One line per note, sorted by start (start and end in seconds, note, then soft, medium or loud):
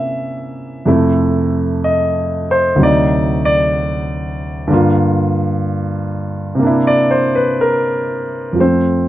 0.00 0.85 C3 medium
0.00 0.87 A#3 medium
0.00 0.88 C#4 soft
0.00 0.86 E4 medium
0.00 0.90 E5 medium
0.85 2.78 F2 medium
0.85 2.76 C3 medium
0.85 2.79 A3 medium
0.85 2.79 E4 medium
1.84 2.48 D#5 medium
2.51 2.79 C5 medium
2.76 4.68 D2 medium
2.76 4.69 C3 soft
2.76 4.69 F#3 soft
2.81 4.71 D#4 medium
2.81 3.44 D5 medium
3.45 3.63 D5 medium
4.67 6.61 G2 medium
4.67 6.62 D3 medium
4.67 6.58 A#3 medium
4.73 6.64 F4 medium
6.55 8.56 C3 medium
6.59 8.58 A#3 medium
6.59 8.60 D4 medium
6.67 8.62 E4 medium
6.87 7.24 D5 medium
7.11 7.35 C5 medium
7.35 7.55 B4 medium
7.61 8.02 A#4 medium
8.53 9.08 F2 soft
8.53 9.08 F3 soft
8.59 9.08 A3 soft
8.59 8.62 C4 medium
8.59 9.08 C5 medium
8.64 9.08 C4 soft